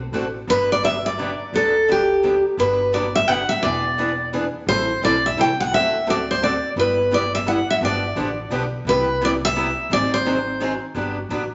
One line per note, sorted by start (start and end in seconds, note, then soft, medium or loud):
0.12 0.42 A1 medium
0.12 0.24 D3 medium
0.12 0.24 A3 medium
0.12 0.24 C4 medium
0.12 0.24 F#4 medium
0.12 0.25 A4 medium
0.47 1.32 G1 medium
0.47 0.69 D3 soft
0.47 0.69 F#3 medium
0.47 0.69 B3 medium
0.47 0.69 D4 medium
0.47 0.70 G4 medium
0.47 0.69 B4 medium
0.72 0.84 D5 medium
0.83 0.94 D3 medium
0.83 0.94 F#3 medium
0.83 0.94 B3 medium
0.83 0.94 D4 medium
0.83 0.94 G4 medium
0.83 1.04 E5 loud
1.06 1.55 D5 medium
1.19 1.29 D3 medium
1.19 1.30 F#3 medium
1.19 1.30 B3 medium
1.19 1.30 D4 medium
1.19 1.30 G4 medium
1.53 2.37 D2 medium
1.53 1.74 D3 medium
1.53 1.74 F#3 medium
1.53 1.74 B3 medium
1.53 1.74 D4 medium
1.53 1.74 G4 medium
1.53 1.87 A4 medium
1.88 1.99 D3 medium
1.88 1.99 F#3 medium
1.88 1.99 B3 medium
1.88 1.99 D4 medium
1.88 1.99 G4 medium
1.88 2.42 G4 medium
2.23 2.34 D3 medium
2.23 2.34 F#3 medium
2.23 2.34 B3 medium
2.23 2.34 D4 medium
2.23 2.35 G4 medium
2.57 3.41 G1 medium
2.57 2.79 D3 medium
2.57 2.79 F#3 medium
2.57 2.79 B3 medium
2.57 2.79 D4 medium
2.57 2.79 G4 medium
2.57 2.91 B4 medium
2.92 3.03 D3 medium
2.92 3.04 F#3 medium
2.92 3.04 B3 medium
2.92 3.04 D4 medium
2.92 3.04 G4 medium
2.92 3.15 D5 medium
3.15 3.28 E5 medium
3.28 3.39 D3 medium
3.28 3.39 F#3 medium
3.28 3.39 B3 medium
3.28 3.39 D4 medium
3.28 3.39 G4 loud
3.28 3.48 F#5 loud
3.49 3.63 E5 loud
3.62 4.46 E1 medium
3.62 3.84 E3 medium
3.62 3.84 B3 soft
3.62 3.84 D4 medium
3.62 3.84 G#4 medium
3.62 3.84 B4 medium
3.62 4.28 D5 medium
3.98 4.09 E3 medium
3.98 4.09 B3 medium
3.98 4.09 D4 medium
3.98 4.09 G#4 medium
3.98 4.09 B4 medium
4.33 4.44 E3 medium
4.33 4.44 B3 medium
4.33 4.44 D4 medium
4.33 4.44 G#4 medium
4.33 4.44 B4 loud
4.67 4.95 A1 medium
4.67 4.88 E3 medium
4.67 4.88 G3 medium
4.67 4.89 C4 medium
4.67 4.89 E4 medium
4.67 4.89 A4 medium
4.67 5.00 C5 loud
5.02 5.32 B1 medium
5.02 5.13 E3 medium
5.02 5.14 G3 medium
5.02 5.14 C4 medium
5.02 5.14 E4 medium
5.02 5.14 A4 medium
5.02 5.23 D5 medium
5.26 5.38 E5 medium
5.37 5.67 C2 medium
5.37 5.48 E3 medium
5.37 5.48 G3 medium
5.37 5.48 C4 medium
5.37 5.48 E4 medium
5.37 5.49 A4 medium
5.41 5.60 G5 medium
5.60 5.72 F#5 loud
5.71 6.55 D2 medium
5.71 5.92 D3 medium
5.71 5.93 A3 medium
5.71 5.93 C4 medium
5.71 5.93 F#4 medium
5.71 5.93 A4 medium
5.71 6.09 E5 loud
6.06 6.18 D3 medium
6.06 6.18 A3 medium
6.06 6.18 C4 medium
6.06 6.18 F#4 medium
6.06 6.18 A4 medium
6.06 6.28 D5 medium
6.31 6.44 C5 medium
6.43 6.53 D3 medium
6.43 6.53 A3 medium
6.43 6.53 C4 medium
6.43 6.53 F#4 medium
6.43 6.53 A4 medium
6.43 6.69 D5 medium
6.76 7.60 G1 medium
6.76 6.97 G3 medium
6.76 6.97 B3 medium
6.76 6.98 E4 medium
6.76 6.98 G4 medium
6.76 7.14 B4 medium
7.11 7.22 G3 medium
7.11 7.22 B3 medium
7.11 7.23 E4 medium
7.11 7.23 G4 medium
7.11 7.33 D5 medium
7.35 7.47 E5 medium
7.46 7.57 G3 medium
7.46 7.58 B3 medium
7.46 7.58 E4 medium
7.46 7.58 G4 medium
7.46 7.67 F#5 medium
7.71 7.76 E5 medium
7.81 8.09 G1 medium
7.81 8.02 D3 medium
7.81 8.02 F3 medium
7.81 8.02 B3 medium
7.81 8.02 D4 medium
7.81 8.02 G4 medium
7.81 8.49 D5 medium
8.16 8.46 A1 medium
8.16 8.27 D3 medium
8.16 8.27 F3 medium
8.16 8.28 B3 medium
8.16 8.28 D4 medium
8.16 8.28 G4 medium
8.50 8.80 B1 medium
8.50 8.62 D3 medium
8.50 8.62 F3 medium
8.50 8.62 B3 medium
8.50 8.62 D4 loud
8.50 8.63 G4 medium
8.85 9.69 C2 medium
8.85 9.07 C3 medium
8.85 9.07 G3 medium
8.85 9.07 B3 medium
8.85 9.07 E4 medium
8.85 9.07 G4 medium
8.85 9.20 B4 medium
9.22 9.32 C3 medium
9.22 9.32 G3 medium
9.22 9.32 B3 medium
9.22 9.32 E4 loud
9.22 9.32 G4 medium
9.22 9.30 D5 loud
9.45 9.93 E5 loud
9.55 9.66 C3 medium
9.55 9.67 G3 medium
9.55 9.67 B3 medium
9.55 9.67 E4 medium
9.55 9.67 G4 loud
9.90 10.74 G#1 medium
9.90 10.11 D#3 medium
9.90 10.11 F#3 medium
9.90 10.11 C4 medium
9.90 10.11 D#4 medium
9.90 10.12 G#4 medium
9.90 10.11 D5 loud
10.14 10.78 C5 medium
10.25 10.36 D#3 medium
10.25 10.37 F#3 medium
10.25 10.37 C4 medium
10.25 10.37 D#4 medium
10.25 10.37 G#4 medium
10.61 10.71 D#3 medium
10.61 10.71 F#3 medium
10.61 10.71 C4 medium
10.61 10.72 D#4 medium
10.61 10.72 G#4 medium
10.95 11.23 G1 medium
10.95 11.16 D3 medium
10.95 11.16 F#3 medium
10.95 11.16 B3 medium
10.95 11.16 D4 medium
10.95 11.16 G4 medium
11.29 11.54 A1 medium
11.29 11.41 D3 medium
11.29 11.41 F#3 medium
11.29 11.41 B3 medium
11.29 11.41 D4 medium
11.29 11.42 G4 medium